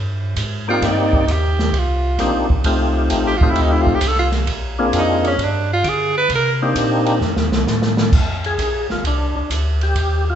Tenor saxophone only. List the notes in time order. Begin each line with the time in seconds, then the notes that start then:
0.70 F4
0.86 D#4
1.32 G4
1.79 F4
3.27 G4
3.38 F4
3.50 E4
3.62 D#4
3.73 E4
3.82 F4
3.95 G4
4.08 A4
4.19 F4
4.98 D#4
5.27 C#4
5.44 D4
5.73 F4
5.89 G#4
6.17 B4
6.35 A#4